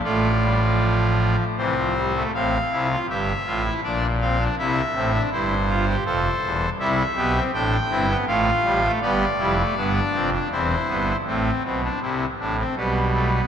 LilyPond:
<<
  \new Staff \with { instrumentName = "Pipe organ" } { \time 3/4 \key f \major \tempo 4 = 80 << { d''2 c''4 | f''4 e''4 d''8 f''8 | e''4 c''4 c''4 | e''4 g''4 f''4 |
d''2 c''4 | r2. | } \\ { f'2 c'4 | c'8 e'16 f'16 g'8 f'16 e'16 d'8 c'16 d'16 | e'8 c'16 d'16 e'8 f'16 g'16 a'4 | e'8 g'8 d'8 e'8 f'4 |
g'8 e'8 d'4 c'8 b8 | a8 c'16 d'16 e'8 d'16 c'16 b8 a16 b16 | } >> }
  \new Staff \with { instrumentName = "Pipe organ" } { \clef bass \time 3/4 \key f \major << { a8 g16 f4~ f16 e16 f16 g16 a16 | r2. | r2. | g8 b16 c'16 r8 c'16 b16 a8 g16 a16 |
b8 g16 a16 b8 c'16 d'16 e'4 | c'2 g4 | } \\ { <a,, a,>2 <c, c>4 | <a,, a,>8 <c, c>8 <g,, g,>8 <a,, a,>8 <bes,, bes,>4 | <c, c>8 <a,, a,>8 <g,, g,>4 <f,, f,>8 <e,, e,>8 | <c, c>8 <b,, b,>8 <a,, a,>8 <g,, g,>8 <a,, a,>8 <a,, a,>8 |
<g,, g,>8 <f,, f,>8 <g,, g,>8 <f,, f,>8 <e,, e,>8 <g,, g,>8 | <a,, a,>8 <b,, b,>8 <c, c>8 <a,, a,>8 <b,, b,>4 | } >> }
>>